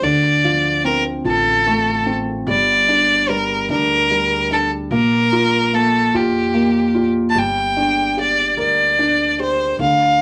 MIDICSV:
0, 0, Header, 1, 4, 480
1, 0, Start_track
1, 0, Key_signature, -2, "minor"
1, 0, Tempo, 814111
1, 13, Time_signature, 6, 3, 24, 8
1, 6024, End_track
2, 0, Start_track
2, 0, Title_t, "Violin"
2, 0, Program_c, 0, 40
2, 20, Note_on_c, 0, 74, 70
2, 497, Note_off_c, 0, 74, 0
2, 503, Note_on_c, 0, 70, 74
2, 609, Note_off_c, 0, 70, 0
2, 749, Note_on_c, 0, 69, 72
2, 1259, Note_off_c, 0, 69, 0
2, 1470, Note_on_c, 0, 74, 73
2, 1944, Note_on_c, 0, 70, 67
2, 1953, Note_off_c, 0, 74, 0
2, 2180, Note_off_c, 0, 70, 0
2, 2189, Note_on_c, 0, 70, 75
2, 2639, Note_off_c, 0, 70, 0
2, 2671, Note_on_c, 0, 69, 57
2, 2775, Note_off_c, 0, 69, 0
2, 2906, Note_on_c, 0, 70, 70
2, 3387, Note_on_c, 0, 69, 66
2, 3396, Note_off_c, 0, 70, 0
2, 3633, Note_on_c, 0, 67, 58
2, 3641, Note_off_c, 0, 69, 0
2, 4164, Note_off_c, 0, 67, 0
2, 4303, Note_on_c, 0, 81, 55
2, 4353, Note_on_c, 0, 79, 68
2, 4362, Note_off_c, 0, 81, 0
2, 4825, Note_off_c, 0, 79, 0
2, 4837, Note_on_c, 0, 74, 65
2, 5050, Note_off_c, 0, 74, 0
2, 5079, Note_on_c, 0, 74, 65
2, 5523, Note_off_c, 0, 74, 0
2, 5553, Note_on_c, 0, 72, 67
2, 5768, Note_off_c, 0, 72, 0
2, 5788, Note_on_c, 0, 77, 73
2, 6024, Note_off_c, 0, 77, 0
2, 6024, End_track
3, 0, Start_track
3, 0, Title_t, "Felt piano"
3, 0, Program_c, 1, 0
3, 0, Control_c, 1, 64, 127
3, 20, Control_c, 1, 64, 0
3, 20, Note_on_c, 1, 50, 53
3, 111, Control_c, 1, 64, 127
3, 262, Note_on_c, 1, 53, 41
3, 499, Note_on_c, 1, 60, 42
3, 738, Note_on_c, 1, 65, 36
3, 984, Note_on_c, 1, 57, 44
3, 1195, Note_off_c, 1, 53, 0
3, 1208, Note_off_c, 1, 60, 0
3, 1217, Note_on_c, 1, 60, 41
3, 1435, Note_off_c, 1, 50, 0
3, 1435, Note_off_c, 1, 65, 0
3, 1445, Note_off_c, 1, 57, 0
3, 1449, Note_off_c, 1, 60, 0
3, 1461, Note_on_c, 1, 55, 50
3, 1462, Control_c, 1, 64, 0
3, 1579, Control_c, 1, 64, 127
3, 1699, Note_on_c, 1, 62, 46
3, 1931, Note_off_c, 1, 55, 0
3, 1940, Note_on_c, 1, 55, 45
3, 2173, Note_off_c, 1, 62, 0
3, 2182, Note_on_c, 1, 62, 46
3, 2414, Note_off_c, 1, 55, 0
3, 2422, Note_on_c, 1, 55, 40
3, 2650, Note_off_c, 1, 62, 0
3, 2659, Note_on_c, 1, 62, 37
3, 2885, Note_off_c, 1, 55, 0
3, 2890, Note_off_c, 1, 62, 0
3, 2900, Note_on_c, 1, 58, 52
3, 2904, Control_c, 1, 64, 0
3, 2995, Control_c, 1, 64, 127
3, 3139, Note_on_c, 1, 65, 43
3, 3371, Note_off_c, 1, 58, 0
3, 3380, Note_on_c, 1, 58, 38
3, 3613, Note_off_c, 1, 65, 0
3, 3622, Note_on_c, 1, 65, 43
3, 3848, Note_off_c, 1, 58, 0
3, 3857, Note_on_c, 1, 58, 42
3, 4087, Note_off_c, 1, 65, 0
3, 4096, Note_on_c, 1, 65, 39
3, 4322, Note_off_c, 1, 58, 0
3, 4329, Note_off_c, 1, 65, 0
3, 4336, Note_on_c, 1, 55, 48
3, 4343, Control_c, 1, 64, 0
3, 4443, Control_c, 1, 64, 127
3, 4580, Note_on_c, 1, 62, 45
3, 4817, Note_on_c, 1, 67, 40
3, 5054, Note_on_c, 1, 70, 42
3, 5291, Note_off_c, 1, 62, 0
3, 5299, Note_on_c, 1, 62, 44
3, 5530, Note_off_c, 1, 67, 0
3, 5539, Note_on_c, 1, 67, 40
3, 5752, Note_off_c, 1, 55, 0
3, 5753, Note_off_c, 1, 70, 0
3, 5763, Note_off_c, 1, 62, 0
3, 5770, Note_off_c, 1, 67, 0
3, 5775, Note_on_c, 1, 50, 48
3, 5783, Control_c, 1, 64, 0
3, 5869, Control_c, 1, 64, 127
3, 6024, Note_off_c, 1, 50, 0
3, 6024, End_track
4, 0, Start_track
4, 0, Title_t, "Upright bass"
4, 0, Program_c, 2, 32
4, 12, Note_on_c, 2, 38, 62
4, 710, Note_off_c, 2, 38, 0
4, 734, Note_on_c, 2, 33, 68
4, 1431, Note_off_c, 2, 33, 0
4, 1454, Note_on_c, 2, 31, 78
4, 2151, Note_off_c, 2, 31, 0
4, 2173, Note_on_c, 2, 38, 71
4, 2871, Note_off_c, 2, 38, 0
4, 2893, Note_on_c, 2, 34, 77
4, 3591, Note_off_c, 2, 34, 0
4, 3619, Note_on_c, 2, 41, 56
4, 4314, Note_off_c, 2, 41, 0
4, 4334, Note_on_c, 2, 31, 68
4, 5031, Note_off_c, 2, 31, 0
4, 5052, Note_on_c, 2, 38, 56
4, 5750, Note_off_c, 2, 38, 0
4, 5770, Note_on_c, 2, 38, 70
4, 6024, Note_off_c, 2, 38, 0
4, 6024, End_track
0, 0, End_of_file